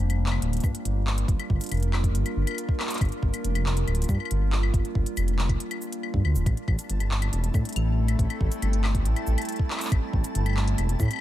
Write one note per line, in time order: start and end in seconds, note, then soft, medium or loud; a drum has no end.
0.00 0.38 F1 medium
0.00 6.45 G3 medium
0.00 6.47 A#3 medium
0.00 7.69 D4 medium
0.00 6.47 F4 medium
0.00 0.64 C5 medium
0.10 closed hi-hat soft
0.10 claves medium
0.26 clap loud
0.32 claves medium
0.39 0.59 D1 medium
0.39 6.46 A#4 medium
0.39 closed hi-hat medium
0.53 closed hi-hat soft
0.57 closed hi-hat soft
0.60 0.72 G2 medium
0.60 kick loud
0.60 closed hi-hat soft
0.60 claves medium
0.60 shaker medium
0.75 closed hi-hat medium
0.85 1.25 G1 medium
0.85 closed hi-hat medium
1.07 clap loud
1.18 closed hi-hat medium
1.28 1.37 G1 loud
1.28 kick loud
1.28 closed hi-hat medium
1.39 closed hi-hat soft
1.39 claves medium
1.50 1.58 G1 loud
1.50 kick medium
1.61 closed hi-hat medium
1.61 shaker medium
1.64 closed hi-hat soft
1.66 closed hi-hat soft
1.69 2.16 F1 medium
1.69 closed hi-hat soft
1.72 closed hi-hat medium
1.72 claves medium
1.74 closed hi-hat soft
1.77 closed hi-hat soft
1.80 closed hi-hat soft
1.83 closed hi-hat soft
1.93 clap loud
1.93 claves medium
2.04 kick medium
2.04 closed hi-hat medium
2.15 2.23 G1 medium
2.15 closed hi-hat medium
2.26 closed hi-hat soft
2.26 claves medium
2.36 2.45 G1 medium
2.47 closed hi-hat medium
2.47 claves medium
2.51 claves medium
2.54 closed hi-hat medium
2.54 claves medium
2.69 kick medium
2.80 clap loud
2.80 claves medium
2.87 clap loud
2.87 closed hi-hat medium
2.87 shaker medium
2.94 clap medium
2.94 closed hi-hat soft
2.98 3.09 G1 loud
2.98 kick loud
2.98 closed hi-hat soft
3.01 closed hi-hat medium
3.01 claves medium
3.05 closed hi-hat soft
3.09 closed hi-hat soft
3.12 closed hi-hat soft
3.23 3.31 G1 loud
3.23 kick medium
3.34 closed hi-hat medium
3.34 claves medium
3.34 shaker medium
3.44 3.84 F1 medium
3.44 closed hi-hat medium
3.55 closed hi-hat soft
3.55 claves medium
3.66 clap loud
3.77 closed hi-hat medium
3.87 4.04 D1 medium
3.87 closed hi-hat soft
3.87 claves medium
3.95 closed hi-hat soft
4.02 closed hi-hat medium
4.04 closed hi-hat soft
4.09 4.17 G2 medium
4.09 kick loud
4.09 claves soft
4.09 shaker medium
4.15 claves soft
4.20 claves medium
4.25 claves medium
4.31 4.70 G1 medium
4.31 closed hi-hat medium
4.52 clap loud
4.63 claves medium
4.74 4.82 G1 loud
4.74 kick loud
4.74 closed hi-hat medium
4.85 closed hi-hat soft
4.95 5.04 G1 loud
4.95 kick medium
5.06 closed hi-hat medium
5.17 5.56 F1 medium
5.17 closed hi-hat medium
5.17 claves medium
5.17 shaker medium
5.28 closed hi-hat soft
5.39 clap loud
5.49 kick medium
5.49 closed hi-hat medium
5.49 claves medium
5.60 closed hi-hat medium
5.71 closed hi-hat soft
5.71 claves medium
5.82 shaker medium
5.92 closed hi-hat medium
6.03 claves medium
6.14 6.22 G2 loud
6.14 kick medium
6.25 6.37 D2 loud
6.25 claves medium
6.35 6.44 D1 loud
6.35 shaker medium
6.46 6.55 A1 loud
6.46 11.21 G3 medium
6.46 11.21 A5 medium
6.46 kick loud
6.46 closed hi-hat medium
6.46 claves medium
6.57 closed hi-hat soft
6.67 6.76 A1 loud
6.67 11.21 A3 medium
6.67 11.21 C4 medium
6.67 kick medium
6.67 claves medium
6.79 closed hi-hat medium
6.79 shaker medium
6.89 7.29 G1 medium
6.89 11.21 E4 medium
6.89 closed hi-hat medium
7.00 closed hi-hat soft
7.00 claves soft
7.11 clap loud
7.22 10.58 A4 medium
7.22 closed hi-hat medium
7.22 claves medium
7.33 7.50 E1 medium
7.33 closed hi-hat medium
7.44 closed hi-hat soft
7.54 7.63 A2 medium
7.54 kick loud
7.54 claves medium
7.54 shaker medium
7.65 closed hi-hat soft
7.69 closed hi-hat soft
7.73 8.15 A1 medium
7.73 closed hi-hat soft
7.76 closed hi-hat medium
7.76 claves medium
8.08 closed hi-hat medium
8.08 claves medium
8.19 8.27 A1 loud
8.19 kick loud
8.19 closed hi-hat medium
8.30 closed hi-hat soft
8.30 claves medium
8.41 8.49 A1 loud
8.41 kick medium
8.52 closed hi-hat medium
8.52 shaker medium
8.62 9.07 G1 medium
8.62 closed hi-hat medium
8.62 claves medium
8.73 closed hi-hat soft
8.84 clap loud
8.84 claves medium
8.95 kick medium
8.95 closed hi-hat medium
9.05 9.14 A1 medium
9.05 closed hi-hat medium
9.16 closed hi-hat soft
9.16 claves medium
9.27 9.36 A1 medium
9.27 shaker medium
9.38 closed hi-hat soft
9.38 claves medium
9.42 closed hi-hat soft
9.45 closed hi-hat soft
9.49 closed hi-hat medium
9.52 closed hi-hat soft
9.56 kick medium
9.56 closed hi-hat soft
9.70 clap loud
9.70 claves soft
9.74 clap medium
9.74 claves soft
9.78 closed hi-hat medium
9.78 claves soft
9.78 shaker medium
9.84 clap medium
9.84 shaker medium
9.86 shaker medium
9.89 10.00 A1 loud
9.89 kick loud
9.89 closed hi-hat medium
9.89 claves medium
9.89 shaker soft
10.13 10.22 A1 loud
10.13 kick medium
10.24 closed hi-hat medium
10.24 shaker medium
10.35 10.74 G1 medium
10.35 closed hi-hat medium
10.45 11.21 G4 medium
10.45 closed hi-hat soft
10.45 claves medium
10.49 claves medium
10.53 clap loud
10.53 claves medium
10.57 claves soft
10.60 claves soft
10.64 closed hi-hat medium
10.64 claves soft
10.78 10.95 E1 medium
10.78 closed hi-hat medium
10.78 claves medium
10.89 closed hi-hat soft
11.00 11.08 A2 medium
11.00 kick loud
11.00 claves soft
11.00 shaker medium
11.03 claves soft
11.05 claves soft
11.08 closed hi-hat medium
11.08 claves medium
11.11 claves medium
11.13 claves medium
11.16 claves medium